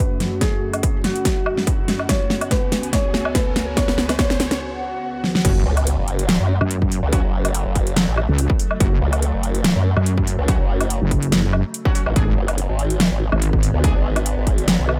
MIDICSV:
0, 0, Header, 1, 11, 480
1, 0, Start_track
1, 0, Key_signature, 3, "minor"
1, 0, Tempo, 419580
1, 471, Time_signature, 4, 2, 24, 8
1, 17158, End_track
2, 0, Start_track
2, 0, Title_t, "Felt piano"
2, 0, Program_c, 0, 0
2, 0, Note_on_c, 0, 71, 93
2, 383, Note_off_c, 0, 71, 0
2, 471, Note_on_c, 0, 68, 85
2, 1103, Note_off_c, 0, 68, 0
2, 1191, Note_on_c, 0, 66, 93
2, 2303, Note_off_c, 0, 66, 0
2, 2391, Note_on_c, 0, 73, 91
2, 2807, Note_off_c, 0, 73, 0
2, 2871, Note_on_c, 0, 71, 86
2, 3334, Note_off_c, 0, 71, 0
2, 3350, Note_on_c, 0, 73, 94
2, 3767, Note_off_c, 0, 73, 0
2, 3830, Note_on_c, 0, 71, 82
2, 4293, Note_off_c, 0, 71, 0
2, 4311, Note_on_c, 0, 73, 90
2, 4727, Note_off_c, 0, 73, 0
2, 4790, Note_on_c, 0, 73, 95
2, 5207, Note_off_c, 0, 73, 0
2, 17158, End_track
3, 0, Start_track
3, 0, Title_t, "Analog synth pad"
3, 0, Program_c, 1, 89
3, 0, Note_on_c, 1, 57, 79
3, 0, Note_on_c, 1, 61, 75
3, 0, Note_on_c, 1, 66, 78
3, 0, Note_on_c, 1, 78, 83
3, 2392, Note_off_c, 1, 57, 0
3, 2394, Note_on_c, 1, 59, 82
3, 2690, Note_on_c, 1, 80, 89
3, 3266, Note_on_c, 1, 73, 68
3, 3431, Note_off_c, 1, 78, 0
3, 3935, Note_off_c, 1, 61, 0
3, 5271, Note_off_c, 1, 66, 0
3, 5272, Note_off_c, 1, 73, 0
3, 5272, Note_off_c, 1, 80, 0
3, 5273, Note_off_c, 1, 59, 0
3, 17158, End_track
4, 0, Start_track
4, 0, Title_t, "Synth stab"
4, 0, Program_c, 2, 62
4, 6232, Note_on_c, 2, 54, 89
4, 6232, Note_on_c, 2, 61, 81
4, 6232, Note_on_c, 2, 66, 94
4, 6342, Note_off_c, 2, 54, 0
4, 6342, Note_off_c, 2, 61, 0
4, 6342, Note_off_c, 2, 66, 0
4, 8152, Note_on_c, 2, 54, 86
4, 8152, Note_on_c, 2, 61, 82
4, 8152, Note_on_c, 2, 66, 94
4, 8262, Note_off_c, 2, 54, 0
4, 8262, Note_off_c, 2, 61, 0
4, 8262, Note_off_c, 2, 66, 0
4, 10072, Note_on_c, 2, 54, 89
4, 10072, Note_on_c, 2, 61, 81
4, 10072, Note_on_c, 2, 66, 96
4, 10182, Note_off_c, 2, 54, 0
4, 10182, Note_off_c, 2, 61, 0
4, 10182, Note_off_c, 2, 66, 0
4, 11992, Note_on_c, 2, 54, 86
4, 11992, Note_on_c, 2, 61, 78
4, 11992, Note_on_c, 2, 66, 95
4, 12102, Note_off_c, 2, 54, 0
4, 12102, Note_off_c, 2, 61, 0
4, 12102, Note_off_c, 2, 66, 0
4, 13560, Note_on_c, 2, 54, 92
4, 13560, Note_on_c, 2, 61, 85
4, 13560, Note_on_c, 2, 66, 100
4, 13655, Note_off_c, 2, 54, 0
4, 13655, Note_off_c, 2, 61, 0
4, 13655, Note_off_c, 2, 66, 0
4, 13670, Note_on_c, 2, 66, 82
4, 13671, Note_on_c, 2, 54, 77
4, 13671, Note_on_c, 2, 61, 73
4, 13781, Note_off_c, 2, 54, 0
4, 13781, Note_off_c, 2, 61, 0
4, 13781, Note_off_c, 2, 66, 0
4, 13911, Note_on_c, 2, 56, 87
4, 13911, Note_on_c, 2, 62, 81
4, 13911, Note_on_c, 2, 68, 96
4, 14021, Note_off_c, 2, 56, 0
4, 14022, Note_off_c, 2, 62, 0
4, 14022, Note_off_c, 2, 68, 0
4, 15831, Note_on_c, 2, 68, 99
4, 15832, Note_on_c, 2, 56, 86
4, 15832, Note_on_c, 2, 62, 80
4, 15942, Note_off_c, 2, 56, 0
4, 15942, Note_off_c, 2, 62, 0
4, 15942, Note_off_c, 2, 68, 0
4, 17158, End_track
5, 0, Start_track
5, 0, Title_t, "Ambient pad"
5, 0, Program_c, 3, 92
5, 0, Note_on_c, 3, 42, 74
5, 0, Note_on_c, 3, 49, 69
5, 0, Note_on_c, 3, 57, 68
5, 0, Note_on_c, 3, 66, 82
5, 2353, Note_off_c, 3, 42, 0
5, 2353, Note_off_c, 3, 57, 0
5, 2392, Note_on_c, 3, 37, 77
5, 2392, Note_on_c, 3, 59, 66
5, 6185, Note_off_c, 3, 49, 0
5, 6185, Note_off_c, 3, 66, 0
5, 6193, Note_off_c, 3, 59, 0
5, 6194, Note_off_c, 3, 37, 0
5, 6231, Note_on_c, 3, 49, 77
5, 6231, Note_on_c, 3, 54, 69
5, 6231, Note_on_c, 3, 57, 86
5, 13866, Note_off_c, 3, 49, 0
5, 13866, Note_off_c, 3, 54, 0
5, 13866, Note_off_c, 3, 57, 0
5, 13912, Note_on_c, 3, 50, 81
5, 13912, Note_on_c, 3, 56, 69
5, 13912, Note_on_c, 3, 59, 83
5, 17158, Note_off_c, 3, 50, 0
5, 17158, Note_off_c, 3, 56, 0
5, 17158, Note_off_c, 3, 59, 0
5, 17158, End_track
6, 0, Start_track
6, 0, Title_t, "Wobble bass"
6, 0, Program_c, 4, 39
6, 6472, Note_on_c, 4, 37, 98
6, 6820, Note_off_c, 4, 37, 0
6, 6840, Note_on_c, 4, 30, 97
6, 7300, Note_off_c, 4, 30, 0
6, 7321, Note_on_c, 4, 42, 98
6, 7540, Note_off_c, 4, 42, 0
6, 8041, Note_on_c, 4, 37, 95
6, 8260, Note_off_c, 4, 37, 0
6, 8281, Note_on_c, 4, 30, 95
6, 8740, Note_off_c, 4, 30, 0
6, 8760, Note_on_c, 4, 30, 98
6, 9220, Note_off_c, 4, 30, 0
6, 9241, Note_on_c, 4, 33, 93
6, 9460, Note_off_c, 4, 33, 0
6, 10312, Note_on_c, 4, 37, 102
6, 10660, Note_off_c, 4, 37, 0
6, 10681, Note_on_c, 4, 30, 102
6, 11141, Note_off_c, 4, 30, 0
6, 11161, Note_on_c, 4, 42, 101
6, 11380, Note_off_c, 4, 42, 0
6, 11881, Note_on_c, 4, 37, 97
6, 12100, Note_off_c, 4, 37, 0
6, 12121, Note_on_c, 4, 30, 97
6, 12580, Note_off_c, 4, 30, 0
6, 13800, Note_on_c, 4, 33, 100
6, 13894, Note_off_c, 4, 33, 0
6, 14151, Note_on_c, 4, 30, 104
6, 14500, Note_off_c, 4, 30, 0
6, 14520, Note_on_c, 4, 32, 93
6, 14980, Note_off_c, 4, 32, 0
6, 15000, Note_on_c, 4, 32, 98
6, 15220, Note_off_c, 4, 32, 0
6, 15721, Note_on_c, 4, 38, 93
6, 15940, Note_off_c, 4, 38, 0
6, 15961, Note_on_c, 4, 32, 101
6, 16420, Note_off_c, 4, 32, 0
6, 16441, Note_on_c, 4, 32, 96
6, 16900, Note_off_c, 4, 32, 0
6, 16920, Note_on_c, 4, 35, 99
6, 17140, Note_off_c, 4, 35, 0
6, 17158, End_track
7, 0, Start_track
7, 0, Title_t, "Wobble bass"
7, 0, Program_c, 5, 39
7, 6232, Note_on_c, 5, 30, 93
7, 6454, Note_off_c, 5, 30, 0
7, 7561, Note_on_c, 5, 42, 97
7, 8020, Note_off_c, 5, 42, 0
7, 9481, Note_on_c, 5, 37, 95
7, 9700, Note_off_c, 5, 37, 0
7, 10072, Note_on_c, 5, 30, 101
7, 10294, Note_off_c, 5, 30, 0
7, 11401, Note_on_c, 5, 42, 98
7, 11860, Note_off_c, 5, 42, 0
7, 12601, Note_on_c, 5, 30, 100
7, 13300, Note_off_c, 5, 30, 0
7, 13912, Note_on_c, 5, 32, 97
7, 14134, Note_off_c, 5, 32, 0
7, 15241, Note_on_c, 5, 32, 97
7, 15700, Note_off_c, 5, 32, 0
7, 17158, End_track
8, 0, Start_track
8, 0, Title_t, "Impact"
8, 0, Program_c, 6, 103
8, 6232, Note_on_c, 6, 60, 81
8, 8152, Note_off_c, 6, 60, 0
8, 17158, End_track
9, 0, Start_track
9, 0, Title_t, "Riser"
9, 0, Program_c, 7, 103
9, 0, Note_on_c, 7, 60, 78
9, 5271, Note_off_c, 7, 60, 0
9, 17158, End_track
10, 0, Start_track
10, 0, Title_t, "Swell"
10, 0, Program_c, 8, 103
10, 5272, Note_on_c, 8, 60, 80
10, 6232, Note_off_c, 8, 60, 0
10, 17158, End_track
11, 0, Start_track
11, 0, Title_t, "Drums"
11, 232, Note_on_c, 9, 38, 56
11, 232, Note_on_c, 9, 42, 52
11, 346, Note_off_c, 9, 38, 0
11, 346, Note_off_c, 9, 42, 0
11, 472, Note_on_c, 9, 36, 95
11, 472, Note_on_c, 9, 38, 57
11, 472, Note_on_c, 9, 42, 77
11, 586, Note_off_c, 9, 36, 0
11, 587, Note_off_c, 9, 38, 0
11, 587, Note_off_c, 9, 42, 0
11, 841, Note_on_c, 9, 42, 54
11, 841, Note_on_c, 9, 77, 57
11, 952, Note_off_c, 9, 42, 0
11, 952, Note_on_c, 9, 36, 97
11, 952, Note_on_c, 9, 42, 83
11, 955, Note_off_c, 9, 77, 0
11, 1066, Note_off_c, 9, 36, 0
11, 1067, Note_off_c, 9, 42, 0
11, 1192, Note_on_c, 9, 38, 67
11, 1192, Note_on_c, 9, 42, 56
11, 1306, Note_off_c, 9, 38, 0
11, 1306, Note_off_c, 9, 42, 0
11, 1322, Note_on_c, 9, 42, 52
11, 1432, Note_off_c, 9, 42, 0
11, 1432, Note_on_c, 9, 36, 94
11, 1432, Note_on_c, 9, 38, 66
11, 1432, Note_on_c, 9, 42, 82
11, 1546, Note_off_c, 9, 36, 0
11, 1547, Note_off_c, 9, 38, 0
11, 1547, Note_off_c, 9, 42, 0
11, 1672, Note_on_c, 9, 77, 73
11, 1786, Note_off_c, 9, 77, 0
11, 1801, Note_on_c, 9, 38, 58
11, 1912, Note_on_c, 9, 36, 98
11, 1912, Note_on_c, 9, 42, 81
11, 1916, Note_off_c, 9, 38, 0
11, 2026, Note_off_c, 9, 36, 0
11, 2027, Note_off_c, 9, 42, 0
11, 2153, Note_on_c, 9, 38, 69
11, 2153, Note_on_c, 9, 42, 50
11, 2267, Note_off_c, 9, 38, 0
11, 2267, Note_off_c, 9, 42, 0
11, 2282, Note_on_c, 9, 77, 56
11, 2392, Note_on_c, 9, 36, 97
11, 2393, Note_on_c, 9, 38, 74
11, 2393, Note_on_c, 9, 42, 83
11, 2396, Note_off_c, 9, 77, 0
11, 2506, Note_off_c, 9, 36, 0
11, 2507, Note_off_c, 9, 38, 0
11, 2507, Note_off_c, 9, 42, 0
11, 2632, Note_on_c, 9, 38, 74
11, 2747, Note_off_c, 9, 38, 0
11, 2761, Note_on_c, 9, 42, 52
11, 2761, Note_on_c, 9, 77, 59
11, 2872, Note_off_c, 9, 42, 0
11, 2872, Note_on_c, 9, 36, 101
11, 2872, Note_on_c, 9, 38, 79
11, 2872, Note_on_c, 9, 42, 78
11, 2876, Note_off_c, 9, 77, 0
11, 2986, Note_off_c, 9, 36, 0
11, 2986, Note_off_c, 9, 38, 0
11, 2986, Note_off_c, 9, 42, 0
11, 3112, Note_on_c, 9, 38, 84
11, 3112, Note_on_c, 9, 42, 54
11, 3227, Note_off_c, 9, 38, 0
11, 3227, Note_off_c, 9, 42, 0
11, 3241, Note_on_c, 9, 42, 53
11, 3352, Note_off_c, 9, 42, 0
11, 3352, Note_on_c, 9, 36, 96
11, 3352, Note_on_c, 9, 38, 80
11, 3352, Note_on_c, 9, 42, 83
11, 3466, Note_off_c, 9, 36, 0
11, 3466, Note_off_c, 9, 38, 0
11, 3466, Note_off_c, 9, 42, 0
11, 3592, Note_on_c, 9, 38, 85
11, 3706, Note_off_c, 9, 38, 0
11, 3721, Note_on_c, 9, 77, 77
11, 3832, Note_on_c, 9, 36, 102
11, 3832, Note_on_c, 9, 38, 88
11, 3832, Note_on_c, 9, 42, 84
11, 3835, Note_off_c, 9, 77, 0
11, 3946, Note_off_c, 9, 36, 0
11, 3946, Note_off_c, 9, 38, 0
11, 3946, Note_off_c, 9, 42, 0
11, 4072, Note_on_c, 9, 38, 90
11, 4072, Note_on_c, 9, 42, 50
11, 4186, Note_off_c, 9, 38, 0
11, 4186, Note_off_c, 9, 42, 0
11, 4312, Note_on_c, 9, 36, 102
11, 4312, Note_on_c, 9, 38, 90
11, 4312, Note_on_c, 9, 42, 77
11, 4426, Note_off_c, 9, 36, 0
11, 4426, Note_off_c, 9, 38, 0
11, 4426, Note_off_c, 9, 42, 0
11, 4440, Note_on_c, 9, 38, 81
11, 4551, Note_off_c, 9, 38, 0
11, 4551, Note_on_c, 9, 38, 93
11, 4666, Note_off_c, 9, 38, 0
11, 4681, Note_on_c, 9, 38, 79
11, 4681, Note_on_c, 9, 42, 51
11, 4681, Note_on_c, 9, 77, 60
11, 4792, Note_off_c, 9, 38, 0
11, 4792, Note_off_c, 9, 42, 0
11, 4792, Note_on_c, 9, 36, 102
11, 4792, Note_on_c, 9, 38, 99
11, 4792, Note_on_c, 9, 42, 79
11, 4795, Note_off_c, 9, 77, 0
11, 4906, Note_off_c, 9, 36, 0
11, 4906, Note_off_c, 9, 38, 0
11, 4906, Note_off_c, 9, 42, 0
11, 4921, Note_on_c, 9, 38, 85
11, 5032, Note_off_c, 9, 38, 0
11, 5032, Note_on_c, 9, 38, 101
11, 5032, Note_on_c, 9, 42, 55
11, 5146, Note_off_c, 9, 38, 0
11, 5146, Note_off_c, 9, 42, 0
11, 5161, Note_on_c, 9, 38, 86
11, 5161, Note_on_c, 9, 42, 52
11, 5275, Note_off_c, 9, 38, 0
11, 5275, Note_off_c, 9, 42, 0
11, 5992, Note_on_c, 9, 38, 59
11, 6107, Note_off_c, 9, 38, 0
11, 6121, Note_on_c, 9, 38, 79
11, 6232, Note_on_c, 9, 36, 124
11, 6232, Note_on_c, 9, 42, 82
11, 6232, Note_on_c, 9, 49, 104
11, 6235, Note_off_c, 9, 38, 0
11, 6346, Note_off_c, 9, 36, 0
11, 6346, Note_off_c, 9, 42, 0
11, 6346, Note_off_c, 9, 49, 0
11, 6601, Note_on_c, 9, 42, 56
11, 6601, Note_on_c, 9, 77, 61
11, 6712, Note_off_c, 9, 42, 0
11, 6712, Note_on_c, 9, 42, 87
11, 6716, Note_off_c, 9, 77, 0
11, 6827, Note_off_c, 9, 42, 0
11, 6952, Note_on_c, 9, 42, 58
11, 7067, Note_off_c, 9, 42, 0
11, 7081, Note_on_c, 9, 42, 57
11, 7192, Note_off_c, 9, 42, 0
11, 7192, Note_on_c, 9, 38, 124
11, 7192, Note_on_c, 9, 42, 83
11, 7307, Note_off_c, 9, 38, 0
11, 7307, Note_off_c, 9, 42, 0
11, 7562, Note_on_c, 9, 77, 82
11, 7672, Note_on_c, 9, 42, 83
11, 7676, Note_off_c, 9, 77, 0
11, 7787, Note_off_c, 9, 42, 0
11, 7801, Note_on_c, 9, 36, 62
11, 7912, Note_on_c, 9, 46, 96
11, 7915, Note_off_c, 9, 36, 0
11, 8027, Note_off_c, 9, 46, 0
11, 8152, Note_on_c, 9, 36, 126
11, 8152, Note_on_c, 9, 42, 84
11, 8266, Note_off_c, 9, 36, 0
11, 8267, Note_off_c, 9, 42, 0
11, 8521, Note_on_c, 9, 42, 58
11, 8521, Note_on_c, 9, 77, 59
11, 8632, Note_off_c, 9, 42, 0
11, 8632, Note_on_c, 9, 42, 86
11, 8635, Note_off_c, 9, 77, 0
11, 8746, Note_off_c, 9, 42, 0
11, 8872, Note_on_c, 9, 36, 64
11, 8872, Note_on_c, 9, 42, 55
11, 8986, Note_off_c, 9, 36, 0
11, 8986, Note_off_c, 9, 42, 0
11, 9000, Note_on_c, 9, 42, 55
11, 9112, Note_off_c, 9, 42, 0
11, 9112, Note_on_c, 9, 38, 120
11, 9112, Note_on_c, 9, 42, 84
11, 9226, Note_off_c, 9, 38, 0
11, 9226, Note_off_c, 9, 42, 0
11, 9352, Note_on_c, 9, 77, 78
11, 9466, Note_off_c, 9, 77, 0
11, 9591, Note_on_c, 9, 42, 86
11, 9706, Note_off_c, 9, 42, 0
11, 9721, Note_on_c, 9, 36, 108
11, 9832, Note_on_c, 9, 46, 91
11, 9835, Note_off_c, 9, 36, 0
11, 9946, Note_off_c, 9, 46, 0
11, 9961, Note_on_c, 9, 77, 62
11, 10072, Note_on_c, 9, 36, 123
11, 10072, Note_on_c, 9, 42, 81
11, 10075, Note_off_c, 9, 77, 0
11, 10186, Note_off_c, 9, 36, 0
11, 10186, Note_off_c, 9, 42, 0
11, 10442, Note_on_c, 9, 42, 54
11, 10442, Note_on_c, 9, 77, 59
11, 10552, Note_off_c, 9, 42, 0
11, 10552, Note_on_c, 9, 42, 81
11, 10556, Note_off_c, 9, 77, 0
11, 10667, Note_off_c, 9, 42, 0
11, 10792, Note_on_c, 9, 42, 55
11, 10907, Note_off_c, 9, 42, 0
11, 10921, Note_on_c, 9, 42, 54
11, 11032, Note_off_c, 9, 42, 0
11, 11032, Note_on_c, 9, 38, 127
11, 11032, Note_on_c, 9, 42, 84
11, 11147, Note_off_c, 9, 38, 0
11, 11147, Note_off_c, 9, 42, 0
11, 11401, Note_on_c, 9, 77, 77
11, 11512, Note_on_c, 9, 42, 81
11, 11515, Note_off_c, 9, 77, 0
11, 11626, Note_off_c, 9, 42, 0
11, 11641, Note_on_c, 9, 36, 66
11, 11752, Note_on_c, 9, 46, 84
11, 11756, Note_off_c, 9, 36, 0
11, 11866, Note_off_c, 9, 46, 0
11, 11992, Note_on_c, 9, 36, 127
11, 11992, Note_on_c, 9, 42, 78
11, 12106, Note_off_c, 9, 36, 0
11, 12107, Note_off_c, 9, 42, 0
11, 12361, Note_on_c, 9, 42, 52
11, 12361, Note_on_c, 9, 77, 60
11, 12473, Note_off_c, 9, 42, 0
11, 12473, Note_on_c, 9, 42, 81
11, 12476, Note_off_c, 9, 77, 0
11, 12587, Note_off_c, 9, 42, 0
11, 12712, Note_on_c, 9, 36, 67
11, 12713, Note_on_c, 9, 42, 56
11, 12826, Note_off_c, 9, 36, 0
11, 12827, Note_off_c, 9, 42, 0
11, 12842, Note_on_c, 9, 42, 54
11, 12952, Note_off_c, 9, 42, 0
11, 12952, Note_on_c, 9, 38, 127
11, 12952, Note_on_c, 9, 42, 79
11, 13067, Note_off_c, 9, 38, 0
11, 13067, Note_off_c, 9, 42, 0
11, 13192, Note_on_c, 9, 77, 75
11, 13307, Note_off_c, 9, 77, 0
11, 13432, Note_on_c, 9, 42, 83
11, 13547, Note_off_c, 9, 42, 0
11, 13561, Note_on_c, 9, 36, 108
11, 13672, Note_on_c, 9, 46, 91
11, 13675, Note_off_c, 9, 36, 0
11, 13786, Note_off_c, 9, 46, 0
11, 13801, Note_on_c, 9, 77, 64
11, 13912, Note_on_c, 9, 36, 127
11, 13912, Note_on_c, 9, 42, 81
11, 13915, Note_off_c, 9, 77, 0
11, 14026, Note_off_c, 9, 36, 0
11, 14026, Note_off_c, 9, 42, 0
11, 14280, Note_on_c, 9, 42, 49
11, 14280, Note_on_c, 9, 77, 64
11, 14391, Note_off_c, 9, 42, 0
11, 14391, Note_on_c, 9, 42, 77
11, 14395, Note_off_c, 9, 77, 0
11, 14505, Note_off_c, 9, 42, 0
11, 14632, Note_on_c, 9, 42, 53
11, 14746, Note_off_c, 9, 42, 0
11, 14760, Note_on_c, 9, 42, 52
11, 14871, Note_off_c, 9, 42, 0
11, 14871, Note_on_c, 9, 38, 122
11, 14871, Note_on_c, 9, 42, 76
11, 14986, Note_off_c, 9, 38, 0
11, 14986, Note_off_c, 9, 42, 0
11, 15240, Note_on_c, 9, 77, 78
11, 15352, Note_on_c, 9, 42, 76
11, 15355, Note_off_c, 9, 77, 0
11, 15466, Note_off_c, 9, 42, 0
11, 15481, Note_on_c, 9, 36, 62
11, 15591, Note_on_c, 9, 46, 88
11, 15595, Note_off_c, 9, 36, 0
11, 15706, Note_off_c, 9, 46, 0
11, 15831, Note_on_c, 9, 42, 78
11, 15832, Note_on_c, 9, 36, 121
11, 15946, Note_off_c, 9, 36, 0
11, 15946, Note_off_c, 9, 42, 0
11, 16201, Note_on_c, 9, 42, 49
11, 16201, Note_on_c, 9, 77, 67
11, 16312, Note_off_c, 9, 42, 0
11, 16312, Note_on_c, 9, 42, 76
11, 16315, Note_off_c, 9, 77, 0
11, 16426, Note_off_c, 9, 42, 0
11, 16551, Note_on_c, 9, 42, 54
11, 16552, Note_on_c, 9, 36, 62
11, 16666, Note_off_c, 9, 36, 0
11, 16666, Note_off_c, 9, 42, 0
11, 16681, Note_on_c, 9, 42, 51
11, 16791, Note_off_c, 9, 42, 0
11, 16791, Note_on_c, 9, 38, 123
11, 16791, Note_on_c, 9, 42, 77
11, 16906, Note_off_c, 9, 38, 0
11, 16906, Note_off_c, 9, 42, 0
11, 17031, Note_on_c, 9, 77, 79
11, 17146, Note_off_c, 9, 77, 0
11, 17158, End_track
0, 0, End_of_file